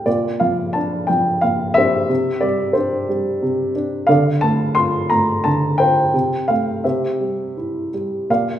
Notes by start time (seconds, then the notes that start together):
0.06 A#2 F4 D5
0.40 F3 F5
0.73 D4 A5
1.07 F3 G5
1.41 A#2 F5
1.74 D4 G4 C5 E5
2.09 C3
2.41 G3 D5
2.73 D4 G4 C5
3.09 G3
3.42 C3
3.76 D4
4.07 D3 A4 D5 F5
4.41 A3 A5
4.75 F4 C6
5.10 A3 A#5
5.44 D3 A5
5.78 F4 C5 G5
6.14 C3
6.48 A3 F5
6.84 C3 G4 C5 E5
7.21 G3
7.57 E4
7.94 G3
8.30 A#2 D5 F5